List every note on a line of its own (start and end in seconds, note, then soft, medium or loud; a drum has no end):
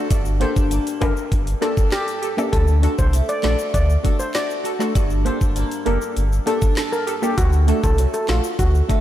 0.00 1.18 D3 medium
0.00 0.71 A3 medium
0.00 0.40 D4 medium
0.00 0.17 F#4 medium
0.10 0.45 G1 loud
0.10 2.53 G2 medium
0.10 kick loud
0.10 closed hi-hat medium
0.10 shaker medium
0.25 shaker medium
0.40 0.53 A#3 medium
0.40 1.62 D4 medium
0.40 0.53 D4 medium
0.40 0.53 G4 medium
0.40 0.53 A4 medium
0.40 0.52 C5 medium
0.40 closed hi-hat medium
0.56 0.79 G1 loud
0.56 kick loud
0.56 shaker medium
0.71 2.59 A#3 medium
0.71 closed hi-hat medium
0.71 shaker medium
0.87 closed hi-hat medium
0.87 shaker medium
1.01 1.13 F#1 loud
1.01 1.13 A#3 medium
1.01 1.13 D4 medium
1.01 1.14 G4 medium
1.01 1.14 A4 medium
1.01 1.13 A#4 medium
1.01 kick loud
1.01 closed hi-hat medium
1.01 high timbale medium
1.01 shaker medium
1.17 shaker medium
1.32 1.55 G1 loud
1.32 kick loud
1.32 closed hi-hat medium
1.32 shaker medium
1.47 closed hi-hat medium
1.47 shaker soft
1.61 1.74 A#3 medium
1.61 1.74 D4 medium
1.61 2.83 D4 medium
1.61 1.74 G4 medium
1.61 1.73 A4 medium
1.61 1.75 A4 medium
1.61 snare medium
1.61 closed hi-hat medium
1.61 shaker medium
1.77 kick loud
1.77 shaker medium
1.92 2.35 G4 medium
1.92 4.34 A4 medium
1.92 snare loud
1.92 clap medium
1.92 closed hi-hat medium
1.92 shaker medium
2.08 closed hi-hat soft
2.08 shaker soft
2.22 2.28 G4 medium
2.22 2.29 A4 medium
2.22 closed hi-hat medium
2.22 shaker medium
2.37 2.50 A#3 medium
2.37 2.50 D4 medium
2.37 2.50 G4 medium
2.37 2.50 A4 medium
2.37 high timbale medium
2.37 shaker medium
2.53 2.87 D2 loud
2.53 6.03 D3 medium
2.53 2.64 A4 loud
2.53 kick loud
2.53 closed hi-hat medium
2.53 shaker medium
2.68 shaker medium
2.82 2.95 A3 medium
2.82 2.95 D4 medium
2.82 4.04 D4 medium
2.82 2.96 F#4 medium
2.82 2.96 A4 medium
2.82 closed hi-hat medium
2.82 shaker soft
2.99 3.21 C2 medium
2.99 3.10 C5 medium
2.99 kick medium
2.99 shaker medium
3.13 5.56 A3 medium
3.13 closed hi-hat medium
3.13 shaker medium
3.29 3.40 D5 medium
3.29 closed hi-hat medium
3.29 shaker medium
3.43 3.55 A#1 loud
3.43 3.56 A3 medium
3.43 3.56 D4 medium
3.43 3.56 F#4 medium
3.43 3.57 A4 medium
3.43 3.55 D5 medium
3.43 snare loud
3.43 clap medium
3.43 closed hi-hat medium
3.59 shaker medium
3.74 3.97 D2 loud
3.74 3.86 D5 medium
3.74 kick loud
3.74 closed hi-hat medium
3.74 shaker medium
3.90 shaker medium
4.03 4.16 A3 medium
4.03 4.16 D4 medium
4.03 5.25 D4 medium
4.03 4.17 F#4 medium
4.03 4.17 A4 medium
4.03 kick medium
4.03 closed hi-hat medium
4.03 shaker medium
4.19 4.31 C5 medium
4.19 shaker medium
4.34 5.01 F#4 medium
4.34 4.78 D5 medium
4.34 snare loud
4.34 clap medium
4.34 closed hi-hat medium
4.34 shaker medium
4.50 shaker medium
4.64 4.71 F#4 medium
4.64 4.72 A4 medium
4.64 closed hi-hat medium
4.64 shaker medium
4.79 4.92 A3 medium
4.79 4.92 D4 medium
4.79 4.92 F#4 medium
4.79 4.93 A4 medium
4.79 snare medium
4.79 shaker medium
4.95 5.30 G1 loud
4.95 7.38 G2 medium
4.95 kick loud
4.95 closed hi-hat medium
4.95 shaker medium
5.10 shaker medium
5.25 5.37 A#3 medium
5.25 6.47 D4 medium
5.25 5.38 D4 medium
5.25 5.38 G4 medium
5.25 5.38 A4 medium
5.25 5.37 C5 medium
5.25 closed hi-hat medium
5.25 shaker soft
5.41 5.64 G1 medium
5.41 kick loud
5.41 shaker medium
5.56 7.44 A#3 medium
5.56 closed hi-hat medium
5.56 shaker medium
5.71 closed hi-hat soft
5.71 shaker medium
5.85 5.98 F#1 loud
5.85 5.98 A#3 medium
5.85 5.98 D4 medium
5.85 5.99 G4 medium
5.85 5.99 A4 medium
5.85 5.98 A#4 medium
5.85 closed hi-hat medium
6.01 shaker medium
6.17 6.39 G1 loud
6.17 closed hi-hat medium
6.17 shaker medium
6.32 shaker medium
6.46 6.59 A#3 medium
6.46 6.59 D4 medium
6.46 9.01 D4 medium
6.46 6.59 G4 medium
6.46 6.58 A4 medium
6.46 6.60 A4 medium
6.46 closed hi-hat medium
6.46 shaker medium
6.62 kick loud
6.62 shaker medium
6.77 9.01 A4 medium
6.77 snare loud
6.77 clap medium
6.77 closed hi-hat medium
6.77 shaker medium
6.92 7.04 A#4 medium
6.92 shaker medium
7.07 7.13 G4 medium
7.07 7.14 A4 medium
7.07 closed hi-hat medium
7.07 shaker medium
7.22 7.35 A#3 medium
7.22 7.35 D4 medium
7.22 7.34 G4 medium
7.22 7.35 G4 medium
7.22 7.35 A4 medium
7.22 shaker medium
7.38 7.72 D2 loud
7.38 9.01 D3 medium
7.38 7.49 F#4 loud
7.38 kick loud
7.38 closed hi-hat medium
7.38 shaker medium
7.52 shaker medium
7.67 7.80 A3 medium
7.67 8.89 A3 medium
7.67 7.80 D4 medium
7.67 7.81 F#4 medium
7.67 7.81 A4 medium
7.67 closed hi-hat medium
7.67 shaker soft
7.83 8.06 C2 medium
7.83 7.95 A4 medium
7.83 kick loud
7.83 shaker medium
7.98 9.01 F#3 medium
7.98 closed hi-hat medium
7.98 shaker medium
8.14 8.25 A4 medium
8.14 closed hi-hat medium
8.14 shaker medium
8.28 8.40 A#1 loud
8.28 8.41 A3 medium
8.28 8.41 D4 medium
8.28 8.40 F4 medium
8.28 8.41 F#4 medium
8.28 8.42 A4 medium
8.28 snare loud
8.28 clap medium
8.28 closed hi-hat medium
8.44 shaker medium
8.59 8.82 D2 loud
8.59 8.70 F#4 medium
8.59 kick loud
8.59 closed hi-hat medium
8.59 shaker medium
8.75 shaker medium
8.88 9.01 A3 medium
8.88 9.01 D4 medium
8.88 9.01 F#4 medium
8.88 9.01 A4 medium
8.88 kick loud
8.88 closed hi-hat medium
8.88 shaker medium